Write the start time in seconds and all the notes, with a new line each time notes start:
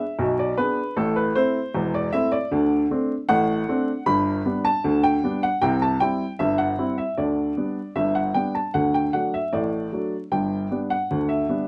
Already playing: E5
0.19 B1 B2
0.39 D5
0.57 B3 D4 G#4 B4
0.97 A1 A2 A4
1.16 B4
1.35 A3 C4 E4 C5
1.74 E1 E2
1.94 D5
2.12 A3 C4 E4 E5
2.32 D5
2.51 D2 D3
2.91 A3 C4 D4
3.29 A1 A2 F#5
3.68 A3 C4 D4
4.06 G1 G2 B5
4.45 G3 B3 D4
4.65 A5
4.84 D2 D3
5.03 G5
5.24 G3 B3 D4
5.43 F#5
5.61 C2 C3 G5
5.82 A5
6.00 G3 C4 E4 G5
6.39 G1 G2 E5
6.58 F#5
6.78 G3 C4 E4
6.98 E5
7.17 D2 D3 D5
7.57 G3 B3 D4
7.96 G1 G2 E5
8.15 F#5
8.34 G3 B3 D4 G5
8.55 A5
8.74 D2 D3 F#5
8.94 G5
9.13 F#3 A3 D4 F#5
9.34 E5
9.53 A1 A2 D5
9.92 F#3 A3 D4
10.32 G1 G2 G5
10.71 G3 B3 D4
10.90 F#5
11.11 D2 D3
11.29 E5
11.49 G3 B3 D4